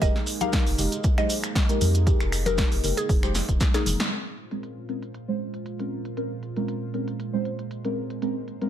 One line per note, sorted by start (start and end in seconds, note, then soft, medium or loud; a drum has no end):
0.00 0.11 F1 loud
0.00 4.08 G#3 medium
0.00 0.15 G#3 medium
0.00 4.08 A#3 medium
0.00 4.08 D#4 medium
0.00 0.15 D#4 medium
0.00 0.15 G4 medium
0.00 0.15 A#4 medium
0.00 0.34 D#5 medium
0.00 kick loud
0.00 closed hi-hat medium
0.00 maracas soft
0.16 snare soft
0.26 open hi-hat loud
0.26 maracas medium
0.41 0.76 G#3 loud
0.41 0.76 D#4 medium
0.41 0.76 G4 medium
0.41 0.76 A#4 loud
0.41 0.72 F5 loud
0.41 closed hi-hat soft
0.41 high conga medium
0.41 maracas soft
0.52 kick loud
0.52 snare loud
0.52 closed hi-hat medium
0.52 maracas soft
0.67 0.74 F1 loud
0.67 open hi-hat medium
0.67 maracas soft
0.78 0.87 F1 medium
0.78 0.92 G#3 medium
0.78 0.92 D#4 medium
0.78 0.92 G4 medium
0.78 0.92 A#4 medium
0.78 open hi-hat medium
0.78 low conga medium
0.78 maracas medium
0.92 closed hi-hat medium
0.92 maracas soft
1.04 kick loud
1.04 closed hi-hat medium
1.04 maracas soft
1.18 1.37 G#3 loud
1.18 1.37 D#4 medium
1.18 1.37 G4 medium
1.18 1.37 C5 loud
1.18 1.39 D#5 medium
1.18 finger snap medium
1.18 high conga medium
1.18 maracas soft
1.30 open hi-hat loud
1.30 maracas medium
1.44 finger snap medium
1.44 closed hi-hat medium
1.44 maracas soft
1.55 kick loud
1.55 snare loud
1.55 closed hi-hat medium
1.55 maracas medium
1.69 2.04 G#3 medium
1.69 2.04 D#4 medium
1.69 2.04 G4 medium
1.69 2.04 A#4 medium
1.69 closed hi-hat medium
1.69 maracas soft
1.81 2.13 F2 loud
1.81 open hi-hat medium
1.81 high conga medium
1.81 maracas medium
1.94 closed hi-hat medium
1.94 maracas soft
2.07 2.20 G#3 medium
2.07 2.20 D#4 medium
2.07 2.20 G4 medium
2.07 2.20 A#4 medium
2.07 kick loud
2.07 closed hi-hat medium
2.07 maracas medium
2.20 2.64 F1 medium
2.20 finger snap medium
2.20 maracas soft
2.32 finger snap medium
2.32 open hi-hat loud
2.32 maracas medium
2.46 2.81 G#3 loud
2.46 2.81 D#4 medium
2.46 2.81 G4 medium
2.46 2.88 A#4 medium
2.46 2.81 A#4 loud
2.46 closed hi-hat medium
2.46 high conga medium
2.46 maracas soft
2.58 kick loud
2.58 snare loud
2.58 closed hi-hat medium
2.58 maracas soft
2.71 2.79 F1 loud
2.71 open hi-hat medium
2.71 maracas soft
2.84 2.93 F1 loud
2.84 2.97 G#3 medium
2.84 2.97 D#4 medium
2.84 2.97 G4 medium
2.84 2.97 A#4 medium
2.84 open hi-hat loud
2.84 low conga medium
2.84 maracas medium
2.97 3.29 G#4 loud
2.97 closed hi-hat medium
2.97 maracas soft
3.09 3.41 F1 medium
3.09 kick loud
3.09 open hi-hat medium
3.09 maracas soft
3.23 3.42 G#3 loud
3.23 3.42 D#4 medium
3.23 3.42 G4 medium
3.23 3.42 C5 loud
3.23 finger snap medium
3.23 high conga medium
3.23 maracas soft
3.35 snare medium
3.35 open hi-hat loud
3.35 maracas medium
3.49 3.56 D#1 medium
3.49 kick medium
3.49 closed hi-hat medium
3.49 maracas soft
3.60 kick loud
3.60 snare medium
3.60 closed hi-hat medium
3.60 maracas soft
3.74 4.09 G#3 medium
3.74 4.09 D#4 medium
3.74 4.09 G#4 medium
3.74 4.06 G#4 medium
3.74 4.09 A#4 medium
3.74 snare medium
3.74 closed hi-hat medium
3.74 maracas soft
3.86 3.95 F1 loud
3.86 open hi-hat loud
3.86 high conga medium
3.86 low conga medium
3.86 maracas medium
4.00 snare medium
4.00 closed hi-hat medium
4.00 maracas soft
4.12 8.69 A#2 medium
4.12 8.69 G#3 medium
4.12 4.25 G#3 medium
4.12 4.25 C4 medium
4.12 4.25 C#4 medium
4.12 8.18 F4 medium
4.12 4.25 A#4 medium
4.12 8.69 C5 medium
4.12 closed hi-hat medium
4.38 closed hi-hat soft
4.51 4.86 G#3 medium
4.51 4.86 C4 medium
4.51 4.86 C#4 medium
4.51 4.86 A#4 loud
4.51 closed hi-hat soft
4.63 closed hi-hat medium
4.89 5.02 G#3 medium
4.89 5.02 C4 medium
4.89 5.02 C#4 medium
4.89 5.02 A#4 medium
4.89 closed hi-hat soft
5.03 closed hi-hat soft
5.14 closed hi-hat medium
5.28 5.47 G#3 medium
5.28 5.47 C4 medium
5.28 5.47 C#4 medium
5.28 5.47 C5 loud
5.54 closed hi-hat soft
5.66 closed hi-hat medium
5.79 6.14 G#3 medium
5.79 6.14 C4 medium
5.79 6.14 C#4 medium
5.79 6.14 A#4 medium
5.79 closed hi-hat medium
6.05 closed hi-hat medium
6.17 6.30 G#3 medium
6.17 6.30 C4 medium
6.17 6.30 C#4 medium
6.17 6.30 A#4 medium
6.17 closed hi-hat medium
6.43 closed hi-hat soft
6.56 6.91 G#3 medium
6.56 6.91 C4 medium
6.56 6.91 C#4 medium
6.56 6.91 A#4 loud
6.56 closed hi-hat soft
6.68 closed hi-hat medium
6.94 7.07 G#3 medium
6.94 7.07 C4 medium
6.94 7.07 C#4 medium
6.94 7.07 A#4 medium
6.94 closed hi-hat soft
7.08 closed hi-hat soft
7.20 closed hi-hat medium
7.33 7.53 G#3 medium
7.33 7.53 C4 medium
7.33 7.53 C#4 medium
7.33 7.53 C5 loud
7.45 closed hi-hat soft
7.59 closed hi-hat soft
7.71 closed hi-hat medium
7.85 8.19 G#3 medium
7.85 8.19 C4 medium
7.85 8.19 C#4 medium
7.85 8.19 A#4 medium
7.85 closed hi-hat medium
8.10 closed hi-hat soft
8.22 8.35 G#3 medium
8.22 8.35 C4 medium
8.22 8.35 C#4 medium
8.22 8.69 D#4 medium
8.22 8.35 A#4 medium
8.22 closed hi-hat medium
8.48 closed hi-hat soft
8.61 8.69 G#3 medium
8.61 8.69 C4 medium
8.61 8.69 C#4 medium
8.61 8.69 A#4 loud
8.61 closed hi-hat soft